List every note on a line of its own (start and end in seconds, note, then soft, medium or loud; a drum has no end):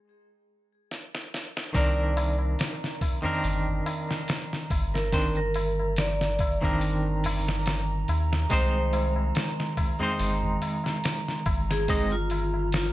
0.00 1.70 G#3 medium
0.00 1.70 C4 medium
0.00 1.71 D#4 medium
0.00 1.71 C5 medium
0.91 snare medium
1.15 snare medium
1.34 snare medium
1.57 snare medium
1.73 2.56 C2 loud
1.73 3.18 D#3 medium
1.73 12.93 D#3 medium
1.73 3.19 C4 medium
1.73 3.19 D4 medium
1.73 3.20 A#4 loud
1.73 2.34 D5 loud
1.73 12.93 A#5 medium
1.73 kick loud
1.73 open hi-hat medium
1.73 tabla na soft
2.17 open hi-hat medium
2.17 tabla na medium
2.38 tabla na soft
2.59 snare loud
2.59 open hi-hat medium
2.59 tabla na soft
2.84 snare soft
3.01 kick medium
3.01 open hi-hat medium
3.01 tabla na medium
3.22 5.07 D#3 medium
3.22 5.08 C4 medium
3.22 5.08 D4 medium
3.22 5.09 A#4 medium
3.22 tabla na medium
3.22 tabla ge medium
3.43 3.82 G1 medium
3.43 open hi-hat medium
3.43 tabla na soft
3.67 tabla ge medium
3.86 open hi-hat medium
3.86 tabla na medium
4.09 snare soft
4.09 tabla na soft
4.28 snare loud
4.28 open hi-hat medium
4.28 tabla na soft
4.53 snare soft
4.70 8.05 G1 medium
4.70 kick medium
4.70 open hi-hat medium
4.70 tabla na medium
4.94 5.32 A#4 medium
4.94 snare medium
4.94 tabla na medium
5.12 5.38 D#3 medium
5.12 5.39 C4 medium
5.12 5.39 D4 medium
5.12 5.39 C5 medium
5.12 kick loud
5.12 open hi-hat medium
5.12 tabla na soft
5.35 5.92 A#4 medium
5.35 closed hi-hat soft
5.54 open hi-hat medium
5.54 tabla na medium
5.79 tabla na soft
5.96 6.56 D5 loud
5.96 snare loud
5.96 open hi-hat medium
5.96 tabla na soft
6.21 snare medium
6.39 kick loud
6.39 open hi-hat medium
6.39 tabla na loud
6.61 8.46 D#3 medium
6.61 8.46 C4 medium
6.61 8.47 D4 medium
6.61 8.47 A#4 medium
6.61 kick medium
6.61 tabla na soft
6.61 tabla ge medium
6.81 open hi-hat medium
6.81 tabla na soft
7.24 open hi-hat medium
7.24 tabla na loud
7.24 tabla ge medium
7.48 snare medium
7.48 tabla na soft
7.66 snare loud
7.66 open hi-hat medium
7.66 tabla na soft
8.08 8.46 D#2 medium
8.08 open hi-hat medium
8.08 tabla na medium
8.32 snare medium
8.32 tabla na soft
8.50 9.32 C2 loud
8.50 9.95 G#3 medium
8.50 9.95 C4 medium
8.50 9.96 D#4 medium
8.50 9.10 C5 loud
8.50 9.96 C5 loud
8.50 kick loud
8.50 open hi-hat medium
8.50 tabla na soft
8.93 open hi-hat medium
8.93 tabla na medium
9.16 tabla na soft
9.35 snare loud
9.35 open hi-hat medium
9.35 tabla na soft
9.60 snare soft
9.77 kick loud
9.77 open hi-hat medium
9.77 tabla na loud
9.99 11.84 G#3 medium
9.99 11.84 C4 medium
9.99 11.85 D#4 medium
9.99 11.86 C5 medium
9.99 tabla na medium
9.99 tabla ge medium
10.19 10.57 G1 medium
10.19 open hi-hat medium
10.19 tabla na soft
10.43 tabla ge medium
10.62 open hi-hat medium
10.62 tabla na medium
10.84 snare soft
10.84 tabla na medium
11.04 snare loud
11.04 open hi-hat medium
11.04 tabla na soft
11.28 snare soft
11.46 12.93 G1 medium
11.46 kick loud
11.46 open hi-hat medium
11.46 tabla na medium
11.70 12.08 G#4 medium
11.70 snare medium
11.70 tabla na medium
11.88 12.14 G#3 medium
11.88 12.15 C4 medium
11.88 12.15 D#4 medium
11.88 12.15 D#5 medium
11.88 kick loud
11.88 open hi-hat medium
11.88 tabla na soft
12.11 12.68 F4 medium
12.11 closed hi-hat soft
12.30 open hi-hat medium
12.30 tabla na medium
12.54 tabla na soft
12.72 12.93 F4 loud
12.72 snare loud
12.72 open hi-hat medium
12.72 tabla na soft